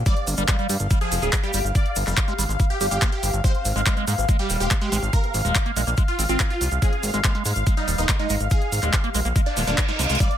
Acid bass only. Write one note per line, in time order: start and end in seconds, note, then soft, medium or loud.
0.06 0.15 G3 medium
0.38 0.43 G3 loud
0.48 0.57 G3 loud
0.59 0.67 G3 loud
0.69 0.75 G3 medium
0.91 0.99 G3 medium
1.01 1.24 F3 medium
1.22 1.31 G3 loud
1.33 1.36 G3 loud
1.43 1.52 G3 loud
1.54 1.60 G3 loud
2.07 2.19 G3 medium
2.17 2.21 F3 medium
2.28 2.34 G#3 loud
2.39 2.44 G3 loud
2.49 2.52 G#3 medium
2.60 2.65 G3 medium
2.81 2.86 G4 loud
3.02 3.10 A#3 medium
3.44 3.53 G#3 medium
3.76 3.81 G#3 loud
3.86 3.95 G#3 loud
3.97 4.05 G#3 loud
4.08 4.13 G#3 medium
4.29 4.37 G#3 medium
4.39 4.62 G3 medium
4.60 4.69 G#3 loud
4.71 4.74 G#3 loud
4.81 4.90 G#3 loud
4.92 4.98 G#3 loud
5.45 5.57 G#3 medium
5.55 5.59 G3 medium
5.66 5.72 A#3 loud
5.76 5.82 G#3 loud
5.87 5.90 A#3 medium
5.98 6.03 G#3 medium
6.19 6.24 C4 medium
6.29 6.41 C4 loud
6.40 6.43 G3 medium
6.82 6.91 G#3 medium
7.14 7.19 G#3 loud
7.24 7.33 G#3 loud
7.35 7.43 G#3 loud
7.45 7.51 G#3 medium
7.67 7.75 G#3 medium
7.77 8.00 G3 medium
7.98 8.07 G#3 loud
8.09 8.12 G#3 loud
8.19 8.28 G#3 loud
8.30 8.36 G#3 loud
8.83 8.95 G#3 medium
8.93 8.97 G3 medium
9.04 9.10 A#3 loud
9.14 9.20 G#3 loud
9.25 9.28 A#3 medium
9.36 9.41 G#3 medium
9.57 9.62 G#3 medium
9.67 9.71 G#3 medium
9.78 9.81 G#3 medium
9.88 9.92 G#3 medium
9.99 10.02 G#3 medium
10.10 10.18 G#3 medium
10.20 10.29 G3 medium